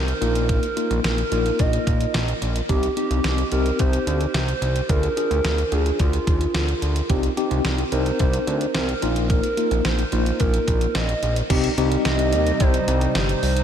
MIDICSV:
0, 0, Header, 1, 6, 480
1, 0, Start_track
1, 0, Key_signature, -3, "minor"
1, 0, Tempo, 550459
1, 428, Time_signature, 4, 2, 24, 8
1, 11891, End_track
2, 0, Start_track
2, 0, Title_t, "Soft synth lead"
2, 0, Program_c, 0, 80
2, 0, Note_on_c, 0, 70, 87
2, 423, Note_off_c, 0, 70, 0
2, 428, Note_on_c, 0, 70, 94
2, 874, Note_off_c, 0, 70, 0
2, 909, Note_on_c, 0, 70, 96
2, 1390, Note_on_c, 0, 75, 97
2, 1403, Note_off_c, 0, 70, 0
2, 1869, Note_off_c, 0, 75, 0
2, 2348, Note_on_c, 0, 67, 98
2, 2571, Note_off_c, 0, 67, 0
2, 2587, Note_on_c, 0, 67, 98
2, 3034, Note_off_c, 0, 67, 0
2, 3067, Note_on_c, 0, 70, 99
2, 3307, Note_on_c, 0, 72, 110
2, 3320, Note_off_c, 0, 70, 0
2, 3782, Note_off_c, 0, 72, 0
2, 3787, Note_on_c, 0, 72, 107
2, 4268, Note_on_c, 0, 70, 110
2, 4281, Note_off_c, 0, 72, 0
2, 4989, Note_on_c, 0, 68, 90
2, 5002, Note_off_c, 0, 70, 0
2, 5230, Note_on_c, 0, 65, 85
2, 5243, Note_off_c, 0, 68, 0
2, 5949, Note_off_c, 0, 65, 0
2, 6909, Note_on_c, 0, 72, 97
2, 7593, Note_off_c, 0, 72, 0
2, 7627, Note_on_c, 0, 70, 88
2, 8074, Note_off_c, 0, 70, 0
2, 8105, Note_on_c, 0, 70, 96
2, 8585, Note_on_c, 0, 72, 99
2, 8599, Note_off_c, 0, 70, 0
2, 9067, Note_on_c, 0, 70, 96
2, 9080, Note_off_c, 0, 72, 0
2, 9547, Note_on_c, 0, 75, 101
2, 9560, Note_off_c, 0, 70, 0
2, 9908, Note_off_c, 0, 75, 0
2, 10510, Note_on_c, 0, 75, 115
2, 10991, Note_on_c, 0, 72, 108
2, 11004, Note_off_c, 0, 75, 0
2, 11465, Note_off_c, 0, 72, 0
2, 11470, Note_on_c, 0, 72, 106
2, 11891, Note_off_c, 0, 72, 0
2, 11891, End_track
3, 0, Start_track
3, 0, Title_t, "Tine electric piano"
3, 0, Program_c, 1, 4
3, 187, Note_on_c, 1, 58, 76
3, 187, Note_on_c, 1, 65, 85
3, 188, Note_on_c, 1, 63, 67
3, 571, Note_off_c, 1, 58, 0
3, 572, Note_off_c, 1, 63, 0
3, 572, Note_off_c, 1, 65, 0
3, 668, Note_on_c, 1, 58, 73
3, 668, Note_on_c, 1, 63, 66
3, 668, Note_on_c, 1, 65, 78
3, 1044, Note_off_c, 1, 58, 0
3, 1045, Note_off_c, 1, 63, 0
3, 1045, Note_off_c, 1, 65, 0
3, 1149, Note_on_c, 1, 58, 69
3, 1149, Note_on_c, 1, 63, 67
3, 1149, Note_on_c, 1, 65, 78
3, 1902, Note_off_c, 1, 58, 0
3, 1902, Note_off_c, 1, 63, 0
3, 1902, Note_off_c, 1, 65, 0
3, 2348, Note_on_c, 1, 63, 66
3, 2348, Note_on_c, 1, 67, 77
3, 2349, Note_on_c, 1, 60, 70
3, 2536, Note_off_c, 1, 63, 0
3, 2536, Note_off_c, 1, 67, 0
3, 2537, Note_off_c, 1, 60, 0
3, 2588, Note_on_c, 1, 67, 77
3, 2589, Note_on_c, 1, 60, 69
3, 2589, Note_on_c, 1, 63, 64
3, 2965, Note_off_c, 1, 60, 0
3, 2965, Note_off_c, 1, 63, 0
3, 2965, Note_off_c, 1, 67, 0
3, 3068, Note_on_c, 1, 60, 73
3, 3068, Note_on_c, 1, 63, 67
3, 3068, Note_on_c, 1, 67, 80
3, 3821, Note_off_c, 1, 60, 0
3, 3821, Note_off_c, 1, 63, 0
3, 3821, Note_off_c, 1, 67, 0
3, 4267, Note_on_c, 1, 62, 70
3, 4267, Note_on_c, 1, 65, 67
3, 4267, Note_on_c, 1, 68, 79
3, 4456, Note_off_c, 1, 62, 0
3, 4456, Note_off_c, 1, 65, 0
3, 4456, Note_off_c, 1, 68, 0
3, 4507, Note_on_c, 1, 62, 72
3, 4507, Note_on_c, 1, 68, 80
3, 4508, Note_on_c, 1, 65, 66
3, 4884, Note_off_c, 1, 62, 0
3, 4884, Note_off_c, 1, 68, 0
3, 4885, Note_off_c, 1, 65, 0
3, 4987, Note_on_c, 1, 65, 66
3, 4987, Note_on_c, 1, 68, 78
3, 4988, Note_on_c, 1, 62, 74
3, 5741, Note_off_c, 1, 62, 0
3, 5741, Note_off_c, 1, 65, 0
3, 5741, Note_off_c, 1, 68, 0
3, 6188, Note_on_c, 1, 60, 88
3, 6188, Note_on_c, 1, 63, 78
3, 6188, Note_on_c, 1, 67, 94
3, 6376, Note_off_c, 1, 60, 0
3, 6376, Note_off_c, 1, 63, 0
3, 6376, Note_off_c, 1, 67, 0
3, 6427, Note_on_c, 1, 60, 86
3, 6427, Note_on_c, 1, 67, 95
3, 6428, Note_on_c, 1, 63, 77
3, 6804, Note_off_c, 1, 60, 0
3, 6804, Note_off_c, 1, 63, 0
3, 6804, Note_off_c, 1, 67, 0
3, 6908, Note_on_c, 1, 60, 72
3, 6908, Note_on_c, 1, 63, 66
3, 6908, Note_on_c, 1, 70, 82
3, 7661, Note_off_c, 1, 60, 0
3, 7661, Note_off_c, 1, 63, 0
3, 7661, Note_off_c, 1, 70, 0
3, 7867, Note_on_c, 1, 63, 68
3, 7867, Note_on_c, 1, 65, 83
3, 7868, Note_on_c, 1, 58, 75
3, 8252, Note_off_c, 1, 58, 0
3, 8252, Note_off_c, 1, 63, 0
3, 8252, Note_off_c, 1, 65, 0
3, 8347, Note_on_c, 1, 58, 70
3, 8347, Note_on_c, 1, 63, 66
3, 8347, Note_on_c, 1, 65, 78
3, 8724, Note_off_c, 1, 58, 0
3, 8724, Note_off_c, 1, 63, 0
3, 8724, Note_off_c, 1, 65, 0
3, 8828, Note_on_c, 1, 58, 71
3, 8828, Note_on_c, 1, 63, 67
3, 8828, Note_on_c, 1, 65, 79
3, 9581, Note_off_c, 1, 58, 0
3, 9581, Note_off_c, 1, 63, 0
3, 9581, Note_off_c, 1, 65, 0
3, 10027, Note_on_c, 1, 60, 91
3, 10027, Note_on_c, 1, 63, 82
3, 10028, Note_on_c, 1, 67, 102
3, 10216, Note_off_c, 1, 60, 0
3, 10216, Note_off_c, 1, 63, 0
3, 10216, Note_off_c, 1, 67, 0
3, 10269, Note_on_c, 1, 63, 87
3, 10270, Note_on_c, 1, 60, 93
3, 10270, Note_on_c, 1, 67, 98
3, 11022, Note_off_c, 1, 60, 0
3, 11022, Note_off_c, 1, 63, 0
3, 11022, Note_off_c, 1, 67, 0
3, 11891, End_track
4, 0, Start_track
4, 0, Title_t, "Analog synth pad"
4, 0, Program_c, 2, 89
4, 10029, Note_on_c, 2, 48, 79
4, 10030, Note_on_c, 2, 55, 72
4, 10030, Note_on_c, 2, 63, 86
4, 11891, Note_off_c, 2, 48, 0
4, 11891, Note_off_c, 2, 55, 0
4, 11891, Note_off_c, 2, 63, 0
4, 11891, End_track
5, 0, Start_track
5, 0, Title_t, "Analog synth bass"
5, 0, Program_c, 3, 38
5, 0, Note_on_c, 3, 36, 105
5, 115, Note_off_c, 3, 36, 0
5, 187, Note_on_c, 3, 34, 93
5, 523, Note_off_c, 3, 34, 0
5, 788, Note_on_c, 3, 34, 102
5, 872, Note_off_c, 3, 34, 0
5, 907, Note_on_c, 3, 34, 99
5, 1076, Note_off_c, 3, 34, 0
5, 1148, Note_on_c, 3, 34, 100
5, 1316, Note_off_c, 3, 34, 0
5, 1390, Note_on_c, 3, 34, 101
5, 1557, Note_off_c, 3, 34, 0
5, 1630, Note_on_c, 3, 34, 91
5, 1797, Note_off_c, 3, 34, 0
5, 1868, Note_on_c, 3, 34, 110
5, 2036, Note_off_c, 3, 34, 0
5, 2108, Note_on_c, 3, 34, 93
5, 2276, Note_off_c, 3, 34, 0
5, 2349, Note_on_c, 3, 36, 100
5, 2516, Note_off_c, 3, 36, 0
5, 2707, Note_on_c, 3, 36, 96
5, 2791, Note_off_c, 3, 36, 0
5, 2827, Note_on_c, 3, 36, 106
5, 2995, Note_off_c, 3, 36, 0
5, 3068, Note_on_c, 3, 36, 103
5, 3236, Note_off_c, 3, 36, 0
5, 3310, Note_on_c, 3, 36, 103
5, 3477, Note_off_c, 3, 36, 0
5, 3547, Note_on_c, 3, 38, 89
5, 3716, Note_off_c, 3, 38, 0
5, 3787, Note_on_c, 3, 36, 98
5, 3955, Note_off_c, 3, 36, 0
5, 4026, Note_on_c, 3, 36, 100
5, 4195, Note_off_c, 3, 36, 0
5, 4268, Note_on_c, 3, 38, 105
5, 4436, Note_off_c, 3, 38, 0
5, 4627, Note_on_c, 3, 38, 99
5, 4711, Note_off_c, 3, 38, 0
5, 4747, Note_on_c, 3, 38, 93
5, 4916, Note_off_c, 3, 38, 0
5, 4986, Note_on_c, 3, 38, 97
5, 5155, Note_off_c, 3, 38, 0
5, 5230, Note_on_c, 3, 38, 106
5, 5397, Note_off_c, 3, 38, 0
5, 5470, Note_on_c, 3, 39, 86
5, 5637, Note_off_c, 3, 39, 0
5, 5707, Note_on_c, 3, 38, 98
5, 5875, Note_off_c, 3, 38, 0
5, 5947, Note_on_c, 3, 38, 95
5, 6115, Note_off_c, 3, 38, 0
5, 6188, Note_on_c, 3, 36, 98
5, 6356, Note_off_c, 3, 36, 0
5, 6546, Note_on_c, 3, 36, 104
5, 6631, Note_off_c, 3, 36, 0
5, 6666, Note_on_c, 3, 36, 101
5, 6835, Note_off_c, 3, 36, 0
5, 6906, Note_on_c, 3, 36, 104
5, 7075, Note_off_c, 3, 36, 0
5, 7149, Note_on_c, 3, 36, 100
5, 7317, Note_off_c, 3, 36, 0
5, 7386, Note_on_c, 3, 38, 92
5, 7555, Note_off_c, 3, 38, 0
5, 7627, Note_on_c, 3, 36, 105
5, 7795, Note_off_c, 3, 36, 0
5, 7867, Note_on_c, 3, 34, 93
5, 8204, Note_off_c, 3, 34, 0
5, 8467, Note_on_c, 3, 34, 100
5, 8552, Note_off_c, 3, 34, 0
5, 8588, Note_on_c, 3, 34, 100
5, 8756, Note_off_c, 3, 34, 0
5, 8828, Note_on_c, 3, 34, 103
5, 8996, Note_off_c, 3, 34, 0
5, 9070, Note_on_c, 3, 34, 106
5, 9237, Note_off_c, 3, 34, 0
5, 9310, Note_on_c, 3, 34, 92
5, 9477, Note_off_c, 3, 34, 0
5, 9549, Note_on_c, 3, 34, 109
5, 9716, Note_off_c, 3, 34, 0
5, 9789, Note_on_c, 3, 34, 97
5, 9957, Note_off_c, 3, 34, 0
5, 10028, Note_on_c, 3, 36, 104
5, 10196, Note_off_c, 3, 36, 0
5, 10267, Note_on_c, 3, 36, 103
5, 10435, Note_off_c, 3, 36, 0
5, 10507, Note_on_c, 3, 36, 108
5, 10749, Note_on_c, 3, 39, 99
5, 10762, Note_off_c, 3, 36, 0
5, 10916, Note_off_c, 3, 39, 0
5, 10990, Note_on_c, 3, 36, 105
5, 11157, Note_off_c, 3, 36, 0
5, 11228, Note_on_c, 3, 36, 99
5, 11396, Note_off_c, 3, 36, 0
5, 11467, Note_on_c, 3, 31, 97
5, 11635, Note_off_c, 3, 31, 0
5, 11707, Note_on_c, 3, 36, 88
5, 11875, Note_off_c, 3, 36, 0
5, 11891, End_track
6, 0, Start_track
6, 0, Title_t, "Drums"
6, 70, Note_on_c, 9, 42, 51
6, 157, Note_off_c, 9, 42, 0
6, 190, Note_on_c, 9, 42, 75
6, 277, Note_off_c, 9, 42, 0
6, 309, Note_on_c, 9, 42, 64
6, 396, Note_off_c, 9, 42, 0
6, 428, Note_on_c, 9, 36, 104
6, 429, Note_on_c, 9, 42, 73
6, 516, Note_off_c, 9, 36, 0
6, 516, Note_off_c, 9, 42, 0
6, 549, Note_on_c, 9, 42, 49
6, 636, Note_off_c, 9, 42, 0
6, 670, Note_on_c, 9, 42, 68
6, 758, Note_off_c, 9, 42, 0
6, 791, Note_on_c, 9, 42, 52
6, 879, Note_off_c, 9, 42, 0
6, 909, Note_on_c, 9, 42, 69
6, 910, Note_on_c, 9, 38, 107
6, 997, Note_off_c, 9, 38, 0
6, 997, Note_off_c, 9, 42, 0
6, 1031, Note_on_c, 9, 42, 51
6, 1118, Note_off_c, 9, 42, 0
6, 1149, Note_on_c, 9, 42, 64
6, 1236, Note_off_c, 9, 42, 0
6, 1271, Note_on_c, 9, 42, 50
6, 1358, Note_off_c, 9, 42, 0
6, 1388, Note_on_c, 9, 42, 68
6, 1390, Note_on_c, 9, 36, 91
6, 1475, Note_off_c, 9, 42, 0
6, 1477, Note_off_c, 9, 36, 0
6, 1510, Note_on_c, 9, 42, 57
6, 1598, Note_off_c, 9, 42, 0
6, 1630, Note_on_c, 9, 36, 89
6, 1633, Note_on_c, 9, 42, 73
6, 1718, Note_off_c, 9, 36, 0
6, 1720, Note_off_c, 9, 42, 0
6, 1749, Note_on_c, 9, 42, 52
6, 1836, Note_off_c, 9, 42, 0
6, 1869, Note_on_c, 9, 38, 107
6, 1870, Note_on_c, 9, 42, 69
6, 1956, Note_off_c, 9, 38, 0
6, 1957, Note_off_c, 9, 42, 0
6, 1991, Note_on_c, 9, 42, 49
6, 2079, Note_off_c, 9, 42, 0
6, 2110, Note_on_c, 9, 42, 78
6, 2198, Note_off_c, 9, 42, 0
6, 2230, Note_on_c, 9, 42, 64
6, 2317, Note_off_c, 9, 42, 0
6, 2348, Note_on_c, 9, 42, 70
6, 2349, Note_on_c, 9, 36, 106
6, 2436, Note_off_c, 9, 36, 0
6, 2436, Note_off_c, 9, 42, 0
6, 2467, Note_on_c, 9, 42, 50
6, 2555, Note_off_c, 9, 42, 0
6, 2589, Note_on_c, 9, 42, 70
6, 2676, Note_off_c, 9, 42, 0
6, 2710, Note_on_c, 9, 42, 54
6, 2797, Note_off_c, 9, 42, 0
6, 2827, Note_on_c, 9, 38, 103
6, 2827, Note_on_c, 9, 42, 67
6, 2914, Note_off_c, 9, 42, 0
6, 2915, Note_off_c, 9, 38, 0
6, 2948, Note_on_c, 9, 42, 51
6, 3036, Note_off_c, 9, 42, 0
6, 3066, Note_on_c, 9, 42, 65
6, 3153, Note_off_c, 9, 42, 0
6, 3189, Note_on_c, 9, 42, 51
6, 3277, Note_off_c, 9, 42, 0
6, 3307, Note_on_c, 9, 42, 68
6, 3310, Note_on_c, 9, 36, 90
6, 3394, Note_off_c, 9, 42, 0
6, 3397, Note_off_c, 9, 36, 0
6, 3429, Note_on_c, 9, 42, 56
6, 3517, Note_off_c, 9, 42, 0
6, 3551, Note_on_c, 9, 42, 75
6, 3638, Note_off_c, 9, 42, 0
6, 3668, Note_on_c, 9, 42, 52
6, 3755, Note_off_c, 9, 42, 0
6, 3788, Note_on_c, 9, 38, 100
6, 3789, Note_on_c, 9, 42, 72
6, 3875, Note_off_c, 9, 38, 0
6, 3876, Note_off_c, 9, 42, 0
6, 3911, Note_on_c, 9, 42, 52
6, 3998, Note_off_c, 9, 42, 0
6, 4030, Note_on_c, 9, 42, 76
6, 4117, Note_off_c, 9, 42, 0
6, 4148, Note_on_c, 9, 42, 64
6, 4235, Note_off_c, 9, 42, 0
6, 4268, Note_on_c, 9, 36, 107
6, 4268, Note_on_c, 9, 42, 67
6, 4355, Note_off_c, 9, 36, 0
6, 4355, Note_off_c, 9, 42, 0
6, 4388, Note_on_c, 9, 42, 49
6, 4475, Note_off_c, 9, 42, 0
6, 4510, Note_on_c, 9, 42, 70
6, 4597, Note_off_c, 9, 42, 0
6, 4630, Note_on_c, 9, 42, 53
6, 4718, Note_off_c, 9, 42, 0
6, 4748, Note_on_c, 9, 38, 103
6, 4748, Note_on_c, 9, 42, 70
6, 4835, Note_off_c, 9, 42, 0
6, 4836, Note_off_c, 9, 38, 0
6, 4869, Note_on_c, 9, 42, 51
6, 4956, Note_off_c, 9, 42, 0
6, 4988, Note_on_c, 9, 42, 63
6, 5075, Note_off_c, 9, 42, 0
6, 5110, Note_on_c, 9, 42, 50
6, 5197, Note_off_c, 9, 42, 0
6, 5227, Note_on_c, 9, 42, 66
6, 5229, Note_on_c, 9, 36, 90
6, 5314, Note_off_c, 9, 42, 0
6, 5317, Note_off_c, 9, 36, 0
6, 5349, Note_on_c, 9, 42, 55
6, 5436, Note_off_c, 9, 42, 0
6, 5470, Note_on_c, 9, 36, 91
6, 5470, Note_on_c, 9, 42, 76
6, 5557, Note_off_c, 9, 36, 0
6, 5558, Note_off_c, 9, 42, 0
6, 5588, Note_on_c, 9, 42, 50
6, 5675, Note_off_c, 9, 42, 0
6, 5707, Note_on_c, 9, 38, 104
6, 5708, Note_on_c, 9, 42, 72
6, 5795, Note_off_c, 9, 38, 0
6, 5796, Note_off_c, 9, 42, 0
6, 5830, Note_on_c, 9, 42, 51
6, 5917, Note_off_c, 9, 42, 0
6, 5949, Note_on_c, 9, 42, 78
6, 6037, Note_off_c, 9, 42, 0
6, 6068, Note_on_c, 9, 42, 65
6, 6155, Note_off_c, 9, 42, 0
6, 6187, Note_on_c, 9, 42, 70
6, 6188, Note_on_c, 9, 36, 107
6, 6274, Note_off_c, 9, 42, 0
6, 6275, Note_off_c, 9, 36, 0
6, 6307, Note_on_c, 9, 42, 49
6, 6394, Note_off_c, 9, 42, 0
6, 6430, Note_on_c, 9, 42, 73
6, 6517, Note_off_c, 9, 42, 0
6, 6549, Note_on_c, 9, 42, 53
6, 6637, Note_off_c, 9, 42, 0
6, 6667, Note_on_c, 9, 42, 70
6, 6668, Note_on_c, 9, 38, 102
6, 6754, Note_off_c, 9, 42, 0
6, 6755, Note_off_c, 9, 38, 0
6, 6788, Note_on_c, 9, 42, 50
6, 6875, Note_off_c, 9, 42, 0
6, 6907, Note_on_c, 9, 42, 64
6, 6994, Note_off_c, 9, 42, 0
6, 7029, Note_on_c, 9, 42, 53
6, 7117, Note_off_c, 9, 42, 0
6, 7146, Note_on_c, 9, 42, 66
6, 7149, Note_on_c, 9, 36, 91
6, 7233, Note_off_c, 9, 42, 0
6, 7236, Note_off_c, 9, 36, 0
6, 7268, Note_on_c, 9, 42, 56
6, 7355, Note_off_c, 9, 42, 0
6, 7390, Note_on_c, 9, 42, 75
6, 7477, Note_off_c, 9, 42, 0
6, 7507, Note_on_c, 9, 42, 52
6, 7594, Note_off_c, 9, 42, 0
6, 7625, Note_on_c, 9, 38, 107
6, 7627, Note_on_c, 9, 42, 71
6, 7713, Note_off_c, 9, 38, 0
6, 7714, Note_off_c, 9, 42, 0
6, 7750, Note_on_c, 9, 42, 50
6, 7837, Note_off_c, 9, 42, 0
6, 7868, Note_on_c, 9, 42, 78
6, 7955, Note_off_c, 9, 42, 0
6, 7988, Note_on_c, 9, 42, 64
6, 8075, Note_off_c, 9, 42, 0
6, 8108, Note_on_c, 9, 36, 105
6, 8108, Note_on_c, 9, 42, 68
6, 8195, Note_off_c, 9, 36, 0
6, 8195, Note_off_c, 9, 42, 0
6, 8227, Note_on_c, 9, 42, 50
6, 8314, Note_off_c, 9, 42, 0
6, 8349, Note_on_c, 9, 42, 71
6, 8436, Note_off_c, 9, 42, 0
6, 8469, Note_on_c, 9, 42, 53
6, 8557, Note_off_c, 9, 42, 0
6, 8587, Note_on_c, 9, 42, 69
6, 8588, Note_on_c, 9, 38, 105
6, 8674, Note_off_c, 9, 42, 0
6, 8675, Note_off_c, 9, 38, 0
6, 8709, Note_on_c, 9, 42, 51
6, 8796, Note_off_c, 9, 42, 0
6, 8826, Note_on_c, 9, 42, 65
6, 8914, Note_off_c, 9, 42, 0
6, 8950, Note_on_c, 9, 42, 50
6, 9037, Note_off_c, 9, 42, 0
6, 9067, Note_on_c, 9, 42, 68
6, 9070, Note_on_c, 9, 36, 94
6, 9154, Note_off_c, 9, 42, 0
6, 9157, Note_off_c, 9, 36, 0
6, 9188, Note_on_c, 9, 42, 56
6, 9276, Note_off_c, 9, 42, 0
6, 9310, Note_on_c, 9, 36, 88
6, 9311, Note_on_c, 9, 42, 77
6, 9397, Note_off_c, 9, 36, 0
6, 9398, Note_off_c, 9, 42, 0
6, 9428, Note_on_c, 9, 42, 53
6, 9515, Note_off_c, 9, 42, 0
6, 9548, Note_on_c, 9, 38, 104
6, 9549, Note_on_c, 9, 42, 69
6, 9635, Note_off_c, 9, 38, 0
6, 9636, Note_off_c, 9, 42, 0
6, 9670, Note_on_c, 9, 42, 51
6, 9758, Note_off_c, 9, 42, 0
6, 9790, Note_on_c, 9, 42, 78
6, 9877, Note_off_c, 9, 42, 0
6, 9909, Note_on_c, 9, 42, 65
6, 9996, Note_off_c, 9, 42, 0
6, 10028, Note_on_c, 9, 42, 73
6, 10029, Note_on_c, 9, 36, 111
6, 10029, Note_on_c, 9, 49, 98
6, 10116, Note_off_c, 9, 36, 0
6, 10116, Note_off_c, 9, 42, 0
6, 10116, Note_off_c, 9, 49, 0
6, 10147, Note_on_c, 9, 42, 52
6, 10235, Note_off_c, 9, 42, 0
6, 10271, Note_on_c, 9, 42, 74
6, 10358, Note_off_c, 9, 42, 0
6, 10391, Note_on_c, 9, 42, 60
6, 10478, Note_off_c, 9, 42, 0
6, 10508, Note_on_c, 9, 42, 76
6, 10509, Note_on_c, 9, 38, 108
6, 10595, Note_off_c, 9, 42, 0
6, 10596, Note_off_c, 9, 38, 0
6, 10629, Note_on_c, 9, 42, 56
6, 10716, Note_off_c, 9, 42, 0
6, 10748, Note_on_c, 9, 42, 67
6, 10835, Note_off_c, 9, 42, 0
6, 10870, Note_on_c, 9, 42, 56
6, 10957, Note_off_c, 9, 42, 0
6, 10987, Note_on_c, 9, 42, 73
6, 10990, Note_on_c, 9, 36, 102
6, 11074, Note_off_c, 9, 42, 0
6, 11077, Note_off_c, 9, 36, 0
6, 11109, Note_on_c, 9, 42, 59
6, 11196, Note_off_c, 9, 42, 0
6, 11230, Note_on_c, 9, 42, 80
6, 11317, Note_off_c, 9, 42, 0
6, 11348, Note_on_c, 9, 42, 57
6, 11435, Note_off_c, 9, 42, 0
6, 11467, Note_on_c, 9, 38, 108
6, 11469, Note_on_c, 9, 42, 79
6, 11555, Note_off_c, 9, 38, 0
6, 11556, Note_off_c, 9, 42, 0
6, 11591, Note_on_c, 9, 42, 54
6, 11678, Note_off_c, 9, 42, 0
6, 11710, Note_on_c, 9, 46, 87
6, 11797, Note_off_c, 9, 46, 0
6, 11829, Note_on_c, 9, 42, 69
6, 11891, Note_off_c, 9, 42, 0
6, 11891, End_track
0, 0, End_of_file